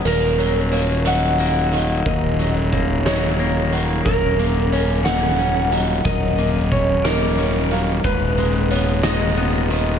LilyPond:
<<
  \new Staff \with { instrumentName = "Felt piano" } { \time 6/8 \key ees \minor \tempo 4. = 60 bes'4 des''8 ees''4 ees''8 | bes'4 des''8 ees''4 ges''8 | bes'4 des''8 ees''4 ees''8 | bes'4 des''8 ees''4 f''8 |
ces''4 des''8 ees''4 ees''8 | }
  \new Staff \with { instrumentName = "Electric slide guitar" } { \time 6/8 \key ees \minor bes'4. ges''4. | ees''4 r8 des''4 r8 | bes'4. ges''4. | ees''4 des''8 bes'4 r8 |
ces''4. ees''4. | }
  \new Staff \with { instrumentName = "Clean electric guitar" } { \clef bass \time 6/8 \key ees \minor ees,8 ges8 bes8 ges8 bes8 ees8 | ees,8 ges8 bes8 ges8 bes8 ees8 | ges,8 bes8 des'8 bes8 des'8 ges8 | ges,8 bes8 des'8 bes8 des'8 ges8 |
aes,8 aes8 ces'8 aes8 ces'8 ees8 | }
  \new Staff \with { instrumentName = "Fingered electric bass" } { \clef bass \time 6/8 \key ees \minor ees,,2. | ees,,2. | ees,,2. | ees,,2. |
ees,,2. | }
  \new DrumStaff \with { instrumentName = "Drums" } \drummode { \time 6/8 hh8 hh8 hh8 hh8 hh8 hh8 | <hh bd>8 hh8 <hh bd>8 <hh sn>8 hh8 hh8 | <hh bd>8 hh8 hh8 <hh sn>8 hh8 hh8 | <hh bd>8 hh8 <hh bd>8 <hh sn>8 hh8 hh8 |
<hh bd>8 hh8 hh8 <hh sn>8 hh8 hh8 | }
>>